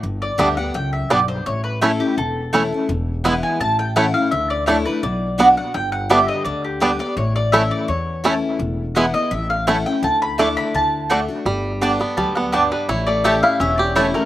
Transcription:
<<
  \new Staff \with { instrumentName = "Mandolin" } { \time 4/4 \key g \lydian \tempo 4 = 168 r8 d''8 e''8 fis''8 g''8 e''8 d''8 c''8 | cis''8 b'8 a'8 g'8 a'2 | r4. gis''8 a''8 g''8 fis''8 f''8 | e''8 d''8 cis''8 b'8 d''4. fis''8 |
g''8 fis''8 e''8 ees''8 d''8 g'8 b'8 d''8 | cis''8 d''8 e''8 d''8 cis''2 | r4 fis''8 ees''8 e''8 f''8 fis''8 g''8 | a''8 b''8 d'''8 b''8 a''4.~ a''16 r16 |
r2 a''8 fis''8 d''8 b'8 | cis''8 d''8 e''8 f''8 e''8 d''8 cis''8 bes'8 | }
  \new Staff \with { instrumentName = "Mandolin" } { \time 4/4 \key g \lydian r4 <b g' d'' a''>16 r4. r16 <b g' d'' a''>16 r8. | r4 <a e' cis'' a''>16 r4. r16 <a e' cis'' a''>16 r8. | r4 <b e' b' gis''>16 r4. r16 <a e' cis'' a''>16 r8. | r4 <a e' d'' a''>16 r4. r16 <b fis' d'' fis''>16 r8. |
r4 <b g' d'' a''>16 r4. r16 <b g' d'' a''>16 r8. | r4 <a e' cis'' a''>16 r4. r16 <a e' cis'' a''>16 r8. | r4 <b e' b' gis''>16 r4. r16 <a e' cis'' a''>16 r8. | r4 <a e' d'' a''>16 r4. r16 <a fis' d'' a''>16 r8. |
r4 <b g' d'' a''>16 r4. r16 <b g' d'' a''>16 r8. | r4 <a e' cis'' a''>16 r4. r16 <a e' cis'' a''>16 r8. | }
  \new Staff \with { instrumentName = "Five-string banjo" } { \time 4/4 \key g \lydian r4 <g b d'>8 r4. <g b d'>8 r8 | r4 <a cis' e'>8 r4. <a cis' e'>8 r8 | r4 <gis b e'>8 r4. <a cis' e'>8 r8 | r4 <a d'>8 r4. <b d'>8 r8 |
r4 <g b d'>8 r4. <g b d'>8 r8 | r4 <a cis' e'>8 r4. <a cis' e'>8 r8 | r4 <gis b e'>8 r4. <a cis' e'>8 r8 | r4 <a d'>8 r4. <a d'>8 r8 |
g4 d'8 b8 g8 b8 d'8 g8 | e'8 a8 g'8 e'8 cis'8 g'8 e'8 a8 | }
  \new Staff \with { instrumentName = "Steel-string acoustic guitar" } { \time 4/4 \key g \lydian << { r4 <d g b g'>8 <b g'>8 r2 | r4 <e a cis' e'>8 <cis' e'>8 r4 <e a cis' e'>8 <cis' e'>8 | r4 <e gis b e'>4 r4 <e a cis' e'>8 <cis' e'>8 | r4 <d a d' e'>8 <d' e'>8 r4 <d b d' fis'>8 <d' fis'>8 |
r4 <d g b g'>4 r4 <d g b g'>8 <b g'>8 | r4 <e a cis' e'>4 r4 <e a cis' e'>4 | r4 <e gis b e'>8 <b e'>8 r4 <e a cis' e'>8 <cis' e'>8 | r4 <d a d' e'>4 r4 <d a d' fis'>8 <d' fis'>8 |
r4 <d g b g'>8 <b g'>8 r2 | r4 <e a cis' e'>8 <cis' e'>8 r4 <e a cis' e'>8 <cis' e'>8 | } \\ { g,2 fis,4 g,4 | a,2 e,2 | e,2 a,2 | d2 b,2 |
g,2 d2 | a,2 e,2 | e,2 a,2 | d2 d2 |
g,2 fis4 g,4 | a,2 e,2 | } >> }
  \new Staff \with { instrumentName = "Upright bass" } { \clef bass \time 4/4 \key g \lydian g,,4 d,4 cis,4 b,,4 | a,,2 e,,2 | e,,2 a,,2 | d,2 b,,2 |
g,,2 d,2 | a,,2 e,2 | e,,2 a,,2 | d,2 d,2 |
g,,2 d,2 | a,,2 e,,2 | }
>>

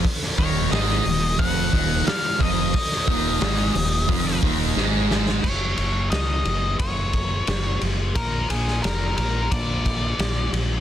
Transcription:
<<
  \new Staff \with { instrumentName = "Lead electric guitar" } { \time 4/4 \key ges \major \tempo 4 = 89 r8 des''8 ees''4 ges''4 f''8 ees''8~ | ees''2~ ees''8 r4. | des''8 des''8 ees''4 des''4. r8 | bes'8 aes'8 bes'8 bes'8 d''4. r8 | }
  \new Staff \with { instrumentName = "Distorted electric guitar" } { \clef bass \time 4/4 \key ges \major r8 <ees, ees>8 <aes, aes>8 ees,8 <f, f>8 <ees, ees>8 r8 <f, f>8 | r8 <ees, ees>8 <aes, aes>8 ees,8 <f, f>8 <ees, ees>8 <aes, aes>4 | r1 | r1 | }
  \new Staff \with { instrumentName = "Distorted electric guitar" } { \clef bass \time 4/4 \key ges \major r8 <ees, ees>8 <aes, aes>8 ees,8 <f, f>8 <ees, ees>8 r8 <f, f>8 | r8 <ees, ees>8 <aes, aes>8 ees,8 <f, f>8 <ees, ees>8 <aes, aes>4 | r1 | r1 | }
  \new Staff \with { instrumentName = "Fingered electric bass" } { \clef bass \time 4/4 \key ges \major r8 ees,,8 aes,,8 ees,,8 f,,8 ees,,8 r8 f,,8 | r8 ees,,8 aes,,8 ees,,8 f,,8 ees,,8 aes,,4 | ges,,8 ges,,8 des,8 ges,,8 ges,,4 ges,,8 ges,,8 | bes,,8 bes,,8 f,,8 bes,,8 bes,,4 bes,,8 bes,,8 | }
  \new DrumStaff \with { instrumentName = "Drums" } \drummode { \time 4/4 <hho bd>16 sn16 <hho bd>8 <hho sn>16 sn16 hho8 <hho bd>8 <hho bd>8 <hho sn>8 <hho bd>8 | <hho bd>16 sn16 <hho bd>8 <hho sn>8 hho8 <hho bd>8 <hho bd>8 sn8 sn16 sn16 | <cymc bd>8 cymr8 <cymr sn>8 cymr8 <bd cymr>8 <bd cymr>8 <cymr sn>8 cymr8 | <bd cymr>8 cymr16 sn16 <cymr sn>8 cymr8 <bd cymr>8 <bd cymr>8 <cymr sn>8 cymr8 | }
>>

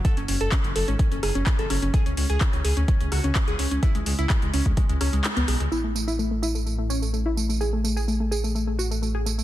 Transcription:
<<
  \new Staff \with { instrumentName = "Synth arpeggio sound" } { \time 4/4 \key a \major \tempo 4 = 127 a'16 cis'16 cis'16 a'16 cis'16 cis'16 a'16 cis'16 cis'16 cis'16 gis'16 cis'16 r16 a'16 cis'16 cis'16 | gis'16 cis'16 cis'16 gis'16 cis'16 cis'16 gis'16 cis'16 cis'16 cis'16 fis'16 cis'16 r16 gis'16 cis'16 cis'16 | e'16 gis16 gis16 e'16 gis16 gis16 cis'16 gis16 gis16 gis16 cis'16 gis16 gis16 b16 gis16 gis16 | e'16 a16 a16 e'16 a16 a16 e'16 a16 a16 a16 cis'16 a16 a16 e'16 a16 a16 |
gis'16 a16 a16 gis'16 a16 a16 gis'16 a16 a16 a16 fis'16 a16 a16 gis'16 a16 a16 | }
  \new Staff \with { instrumentName = "Detuned saw bass" } { \clef bass \time 4/4 \key a \major r16 fis,,16 fis,,16 fis,,16 r16 fis,,16 fis,,16 gis,,16 r16 fis,,16 fis,,16 fis,,16 r16 fis,,16 fis,,16 fis,,16 | r16 cis,16 cis,16 cis,16 r16 cis,16 cis,16 d,16 r16 cis,16 cis,16 cis,16 r16 cis,16 cis,16 cis,16 | r16 cis,16 cis,16 cis,16 r16 cis,16 cis,16 d,16 r16 cis,16 cis,16 cis,16 r16 cis,16 b,,16 cis,16 | a,,1~ |
a,,1 | }
  \new DrumStaff \with { instrumentName = "Drums" } \drummode { \time 4/4 <hh bd>16 hh16 hho16 hh16 <hc hh bd>16 hh16 hho16 hh16 <hh bd>16 hh16 <hho ss>16 hh16 <hc hh bd>16 hh16 <hho ss>16 hh16 | <hh bd>16 hh16 hho16 hh16 <hc hh bd>16 hh16 hho16 hh16 <hh bd>16 hh16 <hho ss>16 hh16 <hc hh bd>16 hh16 hho16 hh16 | <hh bd>16 hh16 hho16 hh16 <hc hh bd>16 hh16 hho16 <hh bd>16 <hh bd>16 hh16 <hho ss>16 hh16 <hc hh>16 hh16 <hho ss>16 hh16 | tamb8 tamb16 tamb16 tamb8 tamb16 tamb16 tamb8 tamb16 tamb16 tamb8 tamb16 tamb16 |
tamb8 tamb16 tamb16 tamb8 tamb16 tamb16 tamb8 tamb16 tamb16 tamb8 tamb16 tamb16 | }
>>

